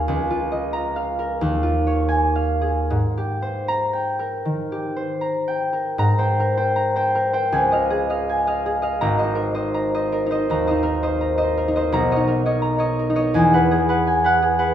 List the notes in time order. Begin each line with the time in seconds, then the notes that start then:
Already playing: F4 G#4 A#4 C#5 D#5 F5 G#5 A#5
0.08 C#2
0.30 F4
0.52 D#5
0.73 A#5
0.96 F5
1.19 A#4
1.41 D#2
1.63 F4
1.87 C#5
2.09 G#5
2.36 F5
2.61 G#4
2.90 G#2
3.18 G4
3.42 C5
3.68 A#5
3.93 G5
4.19 A#4
4.45 D#3
4.72 G4
4.97 C5
5.21 A#5
5.48 G5
5.73 A#4
5.98 G#2 A#5
6.19 C5 G5
6.40 A#4
6.57 C5 G5
6.76 A#5
6.96 C5 G5
7.15 A#4
7.33 C5 G5
7.52 C#2 G#5
7.72 D#5 F5
7.90 G#4
8.10 D#5 F5
8.29 G#5
8.47 D#5 F5
8.66 G#4
8.82 D#5 F5
9.01 G#1 A#5
9.18 C5 D#5
9.24 D#4
9.35 A#4
9.55 C5 D#5
9.74 A#5
9.94 C5 D#5
10.12 A#4
10.26 D#4
10.31 C5 D#5
10.50 D#2 A#5
10.67 D#4 C5 D#5
10.83 A#4
11.03 C5 D#5
11.21 A#5
11.38 C5 D#5
11.57 A#4
11.68 D#4
11.76 C5 D#5
11.92 B1 A#5
12.11 C#5 D#5
12.16 D#4
12.27 A#4
12.46 C#5 D#5
12.62 A#5
12.78 C#5 D#5
12.99 A#4
13.10 D#4
13.16 C#5 D#5
13.34 E2 G#5
13.54 B4 F#5
13.71 G#4
13.89 B4 F#5
14.07 G#5
14.24 B4 F#5
14.42 G#4
14.59 B4 F#5